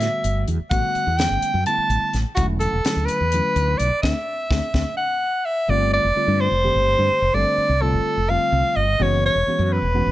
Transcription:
Already playing: E5
0.00 D3 G3 A3 B3 F#4, snare, closed hi-hat
0.24 G1, closed hi-hat
0.48 E2, closed hi-hat
0.59 muted fretless electric bass stroke
0.70 A1 D3 G3 A3 B3 F#4 F#5, kick, closed hi-hat
0.95 muted fretless electric bass stroke, closed hi-hat
1.07 E2
1.17 D3 G3 A3 B3 C#4 G5, snare, closed hi-hat
1.30 G1
1.42 muted fretless electric bass stroke, closed hi-hat
1.54 F#2
1.66 D3 G3 A3 B3 E4 A5, closed hi-hat
1.77 muted fretless electric bass stroke
1.89 A1, closed hi-hat
2.13 A1, snare, closed hi-hat
2.35 E1 D3 F#3 A3 C#4 E4 F#4, kick, closed hi-hat
2.60 A4, closed hi-hat
2.73 E1
2.85 D3 F#3 A3 C#4 E4, snare, closed hi-hat
2.96 D2
3.06 B4, muted fretless electric bass stroke, closed hi-hat
3.20 E2
3.32 D3 F#3 A3 C#4 E4, closed hi-hat
3.56 D2, closed hi-hat
3.78 B1 D5, closed hi-hat
3.92 muted fretless electric bass stroke
4.02 D2 A3 C4 D4 E5, kick, snare
4.50 D2 A3 C4 D4, kick, snare
4.74 D2 A3 C4 D4, kick, snare
4.97 F#5
5.45 E5
5.68 G1 D3 G3 A3 C4 F4 D5
5.93 D5
6.04 F1
6.16 D3 G3 A3 C4 F4, muted fretless electric bass stroke
6.27 G2
6.41 C5
6.51 F1
6.63 D3 G3 A3 C4 G4
6.75 G1
6.98 G2
7.11 muted fretless electric bass stroke
7.22 F1
7.33 G1 D3 G3 A3 C4 D4 D5
7.57 muted fretless electric bass stroke
7.69 C2
7.81 D3 G3 A3 C4 F4 A4
7.93 G1
8.17 F1
8.29 D3 G3 A3 C4 F4 F5
8.52 C2
8.76 G1 D#5
8.99 F#1 E3 G#3 B3 C#4 F#4 C#5
9.26 C#5
9.35 E1
9.47 E3 G#3 B3 C#4 F#4
9.59 F#2
9.64 C#5
9.72 B4
9.82 E1
9.93 E3 G#3 B3 C#4 F#4
10.06 F#1

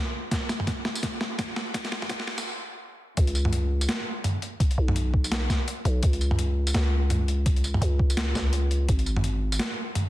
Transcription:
0.31 kick, snare, closed hi-hat
0.49 snare, tambourine
0.60 mid tom
0.67 kick, snare, closed hi-hat
0.85 snare
0.95 tambourine
1.03 kick, snare, closed hi-hat
1.21 snare
1.38 kick, snare, closed hi-hat, mid tom
1.56 snare
1.74 kick, snare, closed hi-hat
1.85 snare, closed hi-hat
1.92 snare
2.02 snare, mid tom
2.09 kick, snare, closed hi-hat
2.20 snare
2.27 snare
2.38 snare, tambourine
3.17 C#2, kick, closed hi-hat
3.27 closed hi-hat
3.35 tambourine
3.45 mid tom
3.53 closed hi-hat
3.81 tambourine
3.89 snare, closed hi-hat
4.24 closed hi-hat, mid tom
4.42 closed hi-hat
4.60 kick, closed hi-hat
4.71 closed hi-hat
4.78 B1
4.88 mid tom
4.96 closed hi-hat
5.14 kick
5.24 tambourine
5.32 snare, closed hi-hat
5.49 kick, snare, tambourine
5.68 closed hi-hat
5.85 B1, closed hi-hat
6.03 C#2, kick, closed hi-hat
6.13 closed hi-hat
6.21 tambourine
6.31 mid tom
6.39 closed hi-hat
6.67 tambourine
6.74 C#2, snare, closed hi-hat
7.10 closed hi-hat, mid tom
7.28 closed hi-hat
7.46 kick, closed hi-hat
7.56 closed hi-hat
7.64 tambourine
7.74 mid tom
7.82 C#2, closed hi-hat
7.99 kick
8.10 tambourine
8.17 snare, closed hi-hat
8.35 C#2, kick, snare, tambourine
8.53 closed hi-hat
8.71 closed hi-hat
8.89 G#1, kick, closed hi-hat
8.99 closed hi-hat
9.06 tambourine
9.16 mid tom
9.24 closed hi-hat
9.52 tambourine
9.59 snare, closed hi-hat
9.95 closed hi-hat, mid tom

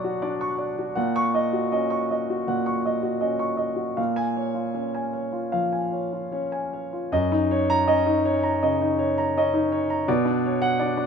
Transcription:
Already playing: B2 F#3 D4 F#4 D5 F#5 C#6
0.04 F#4
0.22 D4 D5
0.41 C#6
0.58 D5
0.79 F#4
0.95 A#2 F#5
1.16 C#6
1.34 D#5
1.53 F#4
1.72 C#4 D#5
1.90 C#6
2.11 D#5
2.30 F#4
2.48 A#2 F#5
2.66 C#6
2.86 D#5
3.03 F#4
3.21 C#4 D#5
3.39 C#6
3.57 D#5
3.76 F#4
3.97 A#2 F5
4.16 G#5
4.36 C#5
4.54 F4
4.74 C#4 C#5
4.95 G#5
5.13 C#5
5.32 F4
5.52 F3 F5
5.72 G#5
5.92 C#5
6.13 F4
6.32 C#4 C#5
6.52 G#5
6.73 C#5
6.93 F4
7.12 F#2 D#5
7.32 D#4
7.51 C#5
7.70 A#5
7.87 C#4 D#5
8.06 D#4
8.25 C#5
8.43 A#5
8.63 C#3 D#5
8.81 D#4
8.99 C#5
9.18 A#5
9.37 C#4 D#5
9.54 D#4
9.72 C#5
9.90 A#5
10.08 B2 D5
10.25 D4
10.46 C#5
10.62 F#5
10.80 D4 D5
10.97 D4

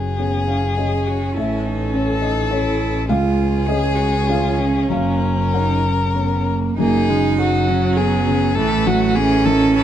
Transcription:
Already playing: F#1 F#2 C#4 G#4 F#5
0.16 B3 C#4 G#4 C#5
0.48 C#4 F5
0.76 C#4 G#4 C#5 D#5
1.06 F#4
1.34 A1 A2 E4 A4 E5
1.66 D#4
1.93 C#4 A4 C#5
2.22 D#4 D#5
2.51 C#4 E4 A4 C#5
3.08 C#2 C#4 F4 G#4 F5
3.66 C#4 G#4 C#5 D#5
3.95 F#4
4.26 C#4 F4 G#4 C#5 F5
4.59 C#4
4.89 F#1 F#2 A#3 A#4 F5
5.53 C#4 D#4 A#4 C#5 F#5
5.86 C#4
6.15 B3 C#4 A#4 C#5
6.47 A#3
6.78 F#1 F#2 A#3 D#4 G#4
7.08 C#3 G#3
7.39 F#3 F#4 G#4
7.68 C#3 C#4
7.96 B3 G#4
8.27 C#3
8.55 A1 A2 E3 A3 A4
8.86 E3 F#3 F#4
9.15 E3 A3 C#4 G#4
9.45 D#3 E3 A4
9.74 E3 A4

